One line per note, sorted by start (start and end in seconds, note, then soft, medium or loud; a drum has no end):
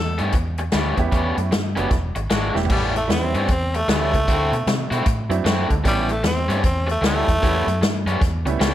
0.00 0.19 E2 medium
0.00 0.21 A4 medium
0.18 0.32 G2 medium
0.18 0.33 A2 medium
0.18 0.33 G3 medium
0.18 0.34 B3 medium
0.18 0.33 C#4 medium
0.18 closed hi-hat medium
0.32 0.71 E2 medium
0.32 muted overdriven electric guitar stroke soft
0.32 kick loud
0.32 closed hi-hat medium
0.58 muted overdriven electric guitar stroke soft
0.58 closed hi-hat medium
0.72 0.97 D2 medium
0.72 0.98 A2 medium
0.72 0.98 G3 medium
0.72 0.97 B3 medium
0.72 0.97 C#4 loud
0.72 snare loud
0.72 closed hi-hat medium
0.97 1.12 E2 medium
0.97 1.48 B3 medium
0.97 1.49 C#4 medium
0.97 1.49 E4 medium
0.97 1.50 G4 medium
0.97 muted overdriven electric guitar stroke soft
0.97 kick medium
0.97 closed hi-hat medium
1.12 1.36 E2 medium
1.12 1.37 A2 medium
1.12 1.36 G3 medium
1.12 1.36 B3 medium
1.12 1.35 C#4 medium
1.12 kick loud
1.12 closed hi-hat medium
1.37 1.51 F#2 medium
1.37 muted overdriven electric guitar stroke soft
1.37 closed hi-hat medium
1.51 1.76 G2 medium
1.51 muted overdriven electric guitar stroke soft
1.51 snare loud
1.51 closed hi-hat medium
1.76 1.90 F#1 medium
1.76 1.92 A2 medium
1.76 1.89 G3 medium
1.76 1.89 B3 medium
1.76 1.90 B3 medium
1.76 1.90 C#4 medium
1.76 1.89 D4 medium
1.76 1.90 F#4 medium
1.76 1.90 G#4 medium
1.76 closed hi-hat medium
1.90 2.15 E1 medium
1.90 muted overdriven electric guitar stroke soft
1.90 kick loud
1.90 snare soft
1.90 closed hi-hat medium
2.15 2.30 G#1 medium
2.15 muted overdriven electric guitar stroke soft
2.15 closed hi-hat medium
2.30 2.54 G#1 medium
2.30 2.55 E3 medium
2.30 2.55 G#3 medium
2.30 2.55 D4 medium
2.30 2.54 F#4 medium
2.30 snare loud
2.30 closed hi-hat medium
2.54 2.69 E1 medium
2.54 2.68 A2 medium
2.54 2.68 B3 medium
2.54 2.68 C#4 medium
2.54 2.68 E4 medium
2.54 2.68 G4 medium
2.54 muted overdriven electric guitar stroke soft
2.54 snare medium
2.65 floor tom medium
2.69 3.08 A1 medium
2.69 2.95 A2 medium
2.69 2.95 G3 medium
2.69 2.95 B3 medium
2.69 2.94 C#4 medium
2.69 kick loud
2.69 crash medium
2.95 3.10 A3 medium
2.95 muted overdriven electric guitar stroke soft
2.95 closed hi-hat medium
3.08 3.33 E2 medium
3.08 3.31 G3 medium
3.08 3.31 A3 medium
3.08 3.31 B3 medium
3.08 3.31 C#4 medium
3.08 3.31 E4 medium
3.08 muted overdriven electric guitar stroke soft
3.08 snare loud
3.08 closed hi-hat medium
3.12 3.49 C4 medium
3.34 3.48 G2 medium
3.34 3.49 A2 medium
3.34 3.49 G3 medium
3.34 3.49 B3 medium
3.34 3.49 C#4 medium
3.34 closed hi-hat medium
3.48 3.87 E2 medium
3.48 3.78 C4 medium
3.48 muted overdriven electric guitar stroke soft
3.48 kick loud
3.48 closed hi-hat medium
3.74 3.89 A3 medium
3.74 muted overdriven electric guitar stroke medium
3.74 closed hi-hat medium
3.88 4.12 D2 medium
3.88 4.13 A2 medium
3.88 4.13 G3 medium
3.88 5.04 A3 loud
3.88 4.13 B3 medium
3.88 4.13 C#4 loud
3.88 snare loud
3.88 closed hi-hat medium
4.14 4.27 C#2 medium
4.14 muted overdriven electric guitar stroke soft
4.14 kick medium
4.14 closed hi-hat medium
4.28 4.51 D2 medium
4.28 4.52 D3 medium
4.28 4.53 C4 medium
4.28 4.52 E4 medium
4.28 4.53 F#4 medium
4.28 kick loud
4.28 closed hi-hat medium
4.52 4.66 B2 medium
4.52 muted overdriven electric guitar stroke soft
4.52 closed hi-hat medium
4.66 4.90 C3 medium
4.66 muted overdriven electric guitar stroke soft
4.66 snare loud
4.66 closed hi-hat medium
4.91 5.05 B2 medium
4.91 5.05 D3 medium
4.91 5.05 C4 medium
4.91 5.05 E4 medium
4.91 5.06 F#4 loud
4.91 closed hi-hat medium
5.06 5.29 A2 loud
5.06 muted overdriven electric guitar stroke soft
5.06 kick loud
5.06 closed hi-hat medium
5.29 5.44 F#2 medium
5.29 5.43 F#3 medium
5.29 5.43 A3 medium
5.29 5.44 C4 medium
5.29 5.44 D4 medium
5.29 5.44 E4 medium
5.29 muted overdriven electric guitar stroke medium
5.29 closed hi-hat medium
5.45 5.69 F#2 medium
5.45 5.70 D3 medium
5.45 5.68 C4 medium
5.45 5.68 E4 medium
5.45 5.68 F#4 medium
5.45 snare loud
5.45 closed hi-hat medium
5.69 5.84 D2 medium
5.69 muted overdriven electric guitar stroke soft
5.69 kick medium
5.69 closed hi-hat medium
5.84 6.23 A1 medium
5.84 6.09 A2 medium
5.84 6.07 G3 medium
5.84 6.09 G3 medium
5.84 6.07 A3 medium
5.84 6.07 B3 medium
5.84 6.09 B3 medium
5.84 6.07 C#4 medium
5.84 6.08 C#4 medium
5.84 6.07 E4 medium
5.84 kick loud
5.84 closed hi-hat medium
5.88 6.14 G3 medium
6.09 6.25 A3 medium
6.09 muted overdriven electric guitar stroke soft
6.09 closed hi-hat medium
6.23 6.48 E2 medium
6.23 6.64 C4 medium
6.23 muted overdriven electric guitar stroke soft
6.23 snare loud
6.23 closed hi-hat medium
6.48 6.63 G2 medium
6.48 6.61 A2 medium
6.48 6.61 G3 medium
6.48 6.62 B3 medium
6.48 6.62 C#4 medium
6.48 closed hi-hat medium
6.62 7.01 E2 loud
6.62 6.89 C4 medium
6.62 muted overdriven electric guitar stroke soft
6.62 kick loud
6.62 closed hi-hat medium
6.87 muted overdriven electric guitar stroke medium
6.87 closed hi-hat medium
6.91 7.04 A3 medium
7.02 7.26 D2 medium
7.02 7.27 A2 medium
7.02 7.28 G3 medium
7.02 7.28 B3 medium
7.02 7.26 C#4 loud
7.02 snare loud
7.02 closed hi-hat medium
7.06 8.19 A3 loud
7.27 7.42 E2 medium
7.27 muted overdriven electric guitar stroke soft
7.27 kick medium
7.27 closed hi-hat medium
7.42 7.66 E2 medium
7.42 7.67 A2 medium
7.42 7.64 G3 medium
7.42 7.67 G3 medium
7.42 7.65 A3 medium
7.42 7.65 B3 medium
7.42 7.67 B3 medium
7.42 7.67 C#4 medium
7.42 7.65 C#4 medium
7.42 7.65 E4 medium
7.42 kick loud
7.42 closed hi-hat medium
7.67 7.80 F#2 medium
7.67 muted overdriven electric guitar stroke soft
7.67 closed hi-hat medium
7.81 8.05 G2 medium
7.81 muted overdriven electric guitar stroke soft
7.81 snare loud
7.81 closed hi-hat medium
8.06 8.20 F#2 medium
8.06 8.20 A2 medium
8.06 8.20 G3 medium
8.06 8.20 B3 medium
8.06 8.21 C#4 medium
8.06 closed hi-hat medium
8.21 8.45 E2 medium
8.21 muted overdriven electric guitar stroke soft
8.21 kick loud
8.21 snare soft
8.21 closed hi-hat medium
8.46 8.60 C#2 medium
8.46 8.59 G3 medium
8.46 8.59 A3 medium
8.46 8.59 B3 medium
8.46 8.59 C#4 medium
8.46 8.60 E4 medium
8.46 muted overdriven electric guitar stroke soft
8.46 closed hi-hat medium
8.60 8.74 C#2 medium
8.60 8.74 A2 medium
8.60 8.74 G3 medium
8.60 8.74 B3 medium
8.60 8.74 C#4 medium
8.60 snare loud
8.60 closed hi-hat medium